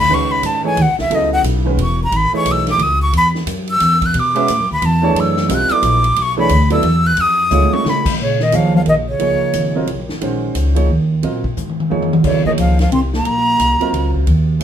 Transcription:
0.00 B5
0.09 C#2 D#3 G#3 C#4 F#4 B4
0.14 C#6
0.32 B5
0.43 G#2 A5, hi-hat pedal, ride
0.63 E3 A3 D#4 G#4 C#5 G#5
0.76 D#2, ride
0.82 F#5
0.87 C#2
0.98 B1 E5, snare
1.10 C#2 C#3 F#3 B3 E4 A4, ride
1.15 D#5
1.33 F#5
1.43 B1, hi-hat pedal, ride
1.65 D#3 G#3 C#4 F#4 B4
1.77 E1, ride
1.83 C#6
2.04 A#5
2.11 G#1, ride
2.17 B5
2.33 E3 A3 D#4 G#4 C#5 C#6
2.45 B1, hi-hat pedal, ride
2.52 E6
2.67 D6, snare, ride
2.78 C#2, ride
2.83 D#6
3.02 C#6
3.13 E2, ride
3.17 B5
3.35 snare
3.46 F#2, hi-hat pedal, ride
3.67 E6, ride
3.80 E2, hi-hat pedal, ride
4.02 kick, ride
4.06 F#6
4.14 B2, ride
4.20 D6
4.35 G#3 C#4 F#4 B4 E5, ride
4.48 A2, hi-hat pedal, ride
4.59 F#2
4.71 D2 B5
4.82 E2 A5, ride
5.02 E3 A3 D4 G#4 C#5
5.15 F#2, ride
5.20 E6
5.37 snare
5.49 B1 G3 C4 F4 A#4 D#5, hi-hat pedal, ride
5.54 F#6
5.69 F#3 B3 E4 A4 D5 D6, muted upright bass stroke, ride
5.82 A#1, hi-hat pedal, ride
6.04 ride
6.16 B1, ride
6.22 C#6
6.37 E3 A3 D4 G#4 C#5 B5
6.49 D2, hi-hat pedal, ride
6.70 F#3 B3 E4 A4 D5 E6, ride
6.83 E2, ride
7.07 F#6
7.17 F2, ride
7.21 D#6
7.50 C#2 A3 D#4 F4 G#4 C#5, hi-hat pedal, high tom
7.62 high tom
7.73 C#6, high tom
7.84 C#3, snare
7.89 B5
8.06 kick, crash
8.18 A#2 C#3 C#5
8.40 D#3 D#5, snare
8.52 D#2 F3 A#3 D#4 G#4 C#5 F5, hi-hat pedal, ride
8.75 F3 F5
8.86 A#1 D#3 D#5, ride
9.09 C#3 C#5
9.19 C#2 F3 A#3 D#4 G#4 C#5, ride
9.41 muted upright bass stroke
9.53 G#1, hi-hat pedal, ride
9.75 F#3 C4 F4 A#4 D#5
9.87 C2, ride
9.99 A#1
10.09 G#1, snare
10.21 A#1 D#3 G#3 C#4 F#4 C5, ride
10.55 C#2, hi-hat pedal, ride
10.75 F3 A#3 D#4 G#4 C#5, ride
10.89 D#2
11.22 A#2 F#3 C4 F4 A#4 D#5, ride
11.44 kick
11.57 G#2, hi-hat pedal, mid tom
11.69 mid tom
11.80 mid tom
11.90 F2 F3 A#3 D#4 G#4 C#5, high tom
12.02 mid tom
12.13 mid tom
12.23 D#2 C#3 F#3 B3 E4 A4 C#5 D5, kick, crash
12.45 D#3 F3 A#3 D#4 G#4 C#5 D#5, kick
12.58 C#2 F3 F5, hi-hat pedal, ride
12.79 F3 F5, snare, ride
12.92 C2 C4 C6, ride
13.13 A#3 A#5, snare
13.25 A#1, ride
13.59 C2, hi-hat pedal, ride
13.80 F#3 C4 F4 A#4 D#5, ride
13.93 C#2, ride
14.14 kick
14.27 D#2, ride
14.60 C2 E3, hi-hat pedal, ride

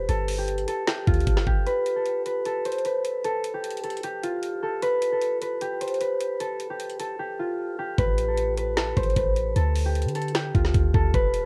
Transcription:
Already playing: F4 G4 B4
0.09 G1 A4, closed hi-hat
0.28 open hi-hat
0.38 G4
0.48 closed hi-hat
0.58 closed hi-hat
0.68 A4, closed hi-hat
0.87 G4, snare, closed hi-hat
1.07 D2 F4, kick, closed hi-hat
1.14 closed hi-hat
1.20 closed hi-hat
1.27 G1, kick, closed hi-hat
1.37 snare
1.47 G1 G4, kick
1.66 B4, closed hi-hat
1.86 closed hi-hat
1.96 A4
2.06 closed hi-hat
2.26 B4, closed hi-hat
2.45 A4, closed hi-hat
2.65 C5, closed hi-hat
2.72 closed hi-hat
2.78 closed hi-hat
2.85 B4, closed hi-hat
3.05 closed hi-hat
3.25 A4, closed hi-hat
3.44 closed hi-hat
3.54 G4
3.64 closed hi-hat
3.71 closed hi-hat
3.77 closed hi-hat
3.84 A4, closed hi-hat
3.90 closed hi-hat
3.97 closed hi-hat
4.03 G4, closed hi-hat
4.23 F4, closed hi-hat
4.43 closed hi-hat
4.63 A4
4.82 B4, closed hi-hat
5.02 closed hi-hat
5.12 A4
5.22 closed hi-hat
5.42 B4, closed hi-hat
5.61 G4, closed hi-hat
5.81 C5, closed hi-hat
5.88 closed hi-hat
5.94 closed hi-hat
6.01 B4, closed hi-hat
6.21 closed hi-hat
6.40 A4, closed hi-hat
6.60 closed hi-hat
6.70 G4
6.80 closed hi-hat
6.90 closed hi-hat
6.99 A4, closed hi-hat
7.19 G4
7.39 F4
7.79 G4
7.98 A1 B4, kick, closed hi-hat
8.18 closed hi-hat
8.28 A4
8.37 closed hi-hat
8.57 B4, closed hi-hat
8.77 A4, snare, closed hi-hat
8.97 A1 C5, kick, closed hi-hat
9.03 closed hi-hat
9.10 closed hi-hat
9.16 A1 B4, kick, closed hi-hat
9.36 closed hi-hat
9.56 D2 A4, closed hi-hat
9.76 open hi-hat
9.86 G4
9.95 closed hi-hat
10.02 D3, closed hi-hat
10.09 closed hi-hat
10.15 A4, closed hi-hat
10.22 closed hi-hat
10.28 closed hi-hat
10.35 G4, snare, closed hi-hat
10.55 D2 F4, kick, closed hi-hat
10.65 snare
10.74 D2, kick, closed hi-hat
10.94 D2 A4, kick
11.14 E1 B4, kick, closed hi-hat
11.34 closed hi-hat

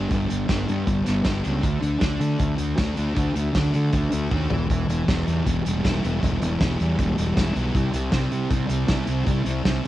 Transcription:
Already playing: B3 D4 G4
0.10 G1 G3, kick, closed hi-hat
0.28 G1 G3, closed hi-hat
0.48 G1 D4, kick, snare, closed hi-hat
0.68 G2 B3, closed hi-hat
0.87 G1 G3, kick, closed hi-hat
1.06 G1 B3, snare, closed hi-hat
1.25 G1 G4, kick, snare, closed hi-hat
1.44 C#2 D4, closed hi-hat
1.63 D2 D3, kick, closed hi-hat
1.82 D2 D3, closed hi-hat
2.01 D2 D4, kick, snare, closed hi-hat
2.20 D3 A3, closed hi-hat
2.39 D2 D3, kick, closed hi-hat
2.58 D2 A3, closed hi-hat
2.78 D2 F#4, kick, snare, closed hi-hat
2.97 D2 D4, closed hi-hat
3.15 D2 D3, kick, closed hi-hat
3.36 D2 D3, closed hi-hat
3.55 D2 D4, kick, snare, closed hi-hat
3.73 D3 A3, closed hi-hat
3.92 D2 D3, kick, closed hi-hat
4.12 D2 A3, closed hi-hat
4.31 D#2 F#4, kick
4.50 E1 E3, floor tom
4.69 E1 E3, kick, closed hi-hat
4.88 E1 E3, closed hi-hat
5.08 E1 B3, kick, snare, closed hi-hat
5.27 E2 G3, closed hi-hat
5.46 E1 E3, kick, closed hi-hat
5.65 E1 G3, closed hi-hat
5.84 E1 E4, kick, snare, closed hi-hat
6.03 E1 B3, closed hi-hat
6.22 E1 E3, kick, closed hi-hat
6.41 E1 E3, closed hi-hat
6.61 E1 B3, kick, snare, closed hi-hat
6.79 E2 G3, closed hi-hat
6.99 E1 E3, kick, closed hi-hat
7.18 E1 G3, closed hi-hat
7.37 E1 E4, kick, snare, closed hi-hat
7.56 B1 B3, closed hi-hat
7.75 C2 C3, kick, closed hi-hat
7.93 C2 C3, closed hi-hat
8.12 C2 C4, kick, snare, closed hi-hat
8.32 C3 G3, closed hi-hat
8.50 C2 C3, kick, closed hi-hat
8.69 C2 G3, closed hi-hat
8.88 C2 E4, kick, snare, closed hi-hat
9.07 C2 C4, closed hi-hat
9.27 C2 C3, kick, closed hi-hat
9.46 C2 C3, closed hi-hat
9.65 C2 C4, kick, snare, closed hi-hat
9.84 G3

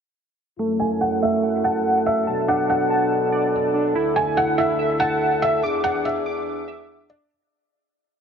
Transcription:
0.59 F#2 F#3 A3 E4 A4
0.80 G#5
1.01 F#5
1.23 A3 E5
1.43 F#5
1.64 F#5 A5
2.06 E5 F#5
2.27 B2 D4 A4 A5
2.48 D4 F#5
2.70 F#5
2.90 A5
3.32 D5
3.74 D4
3.95 D2 D3 E4
4.16 G#5
4.37 F#5
4.58 E4 E5
4.79 E5
5.00 F#5 A5
5.42 E5
5.63 E2 E3 D4 G#4 D6
5.84 D4 F#5
6.05 E5
6.26 D6
6.68 E5
7.10 D4 D5

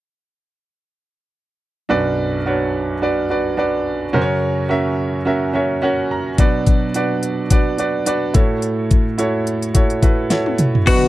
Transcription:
1.89 B1 F#2 D4 F#4 B4 D5
2.46 D4 F#4 B4 C#5
3.02 D4 F#4 B4 D5
3.30 D4 F#4 B4 D5
3.57 D4 F#4 B4 D5
4.13 F#2 C#3 C#4 F#4 A#4 C5
4.21 C#5
4.69 C#4 F#4 A#4 E5
5.25 C#4 F#4 A#4 E5
5.53 C#4 F#4 A#4 C#5 E5
5.82 C#4 F#4 A#4 C#5 F#5
6.11 A#5
6.38 B2 F#3 D4 F#4 B4 D5, kick, closed hi-hat
6.67 kick, closed hi-hat
6.94 D4 F#4 B4 D5, closed hi-hat
7.23 closed hi-hat
7.50 D4 F#4 B4 D5, kick, closed hi-hat
7.78 D4 F#4 B4 D5, closed hi-hat
8.06 D4 F#4 B4 D5, closed hi-hat
8.34 A2 A3 E4 F#4 A4 C#5, kick, closed hi-hat
8.62 closed hi-hat
8.91 kick, closed hi-hat
9.18 E4 F#4 A4 C#5, closed hi-hat
9.47 closed hi-hat
9.62 closed hi-hat
9.74 E4 F#4 A4 C#5, kick, closed hi-hat
9.90 closed hi-hat
10.02 E4 F#4 A4 B4, kick, closed hi-hat
10.30 E4 F#4 A4 C#5, snare, closed hi-hat
10.46 high tom
10.58 closed hi-hat, mid tom
10.75 floor tom
10.86 B2 D3 F#3 B3 D4 F#4 B4, kick, closed hi-hat, crash

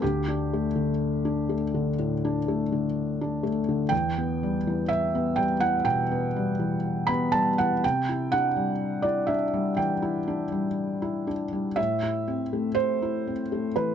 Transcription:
0.02 D2 G4
0.28 D4
0.53 A3
0.75 D3
1.25 D4
1.49 A3
1.74 D3
1.99 A2
2.25 D4
2.48 A3
2.72 D3
3.21 D4
3.43 A3
3.69 D3
3.89 E2 G5
4.18 B3
4.43 G3
4.67 E3
4.89 E5
5.15 B3
5.36 G3 G5
5.60 E3 F#5
5.85 B2 G5
6.11 B3
6.36 G3
6.59 E3
7.07 B3 B5
7.32 G3 A5
7.58 E3 F#5
7.84 C3 G5
8.09 E4
8.32 D4 F#5
8.56 G3
9.02 E4 D5
9.27 D4 E5
9.53 G3
9.77 E3 G5
10.02 E4
10.28 D4
10.52 G3
11.02 E4
11.27 D4
11.52 G3
11.76 A2 E5
12.03 E4
12.28 C4
12.53 A3
12.75 C5
13.02 E4
13.27 C4
13.52 A3
13.76 E3 B4

